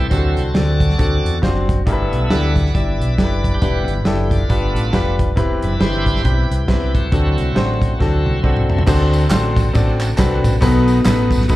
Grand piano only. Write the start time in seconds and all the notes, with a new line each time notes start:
0.10 D3 C4 D4 F#4 G4
0.17 A4
0.54 C4 D4 F#4 A4
0.98 C4 D4 F#4 A4
1.42 C4 D4 F4 C5
1.48 F#4
1.86 G2 D4 E4 G4 A#4
1.92 B4
2.30 D4 E4 G4 A4
2.74 D4 E4 G4 D5
3.17 D4 E4 G4 A4
3.24 B4
3.61 E3 D4 E4 G4 B4
4.05 D4 E4 G4 A4
4.48 G2 D4 F4 G4 B4
4.92 D4 F4 G4 B4
5.36 E3 C4 E4 G4 B4
5.79 C4 D#4 G4 B4
5.85 E4
6.24 C4 D4 G4 B4
6.30 E4
6.68 C4 E4 G4 B4
7.12 D3 C4 D4 F#4 A4
7.55 C4 D4 F#4 C5
7.99 C4 D4 F#4 A4
8.43 C4 D4 F#4 A4 F#5
8.70 A5
8.86 D3 C4 D4 F#4 A4 C5
9.30 C4 D4 F#4 A4 C5
9.73 C4 D4 F#4 A4 D5
10.17 C4 D4 F#4 A4 B4
10.61 B2 B3 C4 F#4 A4 B4
10.66 D#4
11.04 B3 D#4 F#4 A4 B4
11.48 B3 D#4 F#4 A4 B4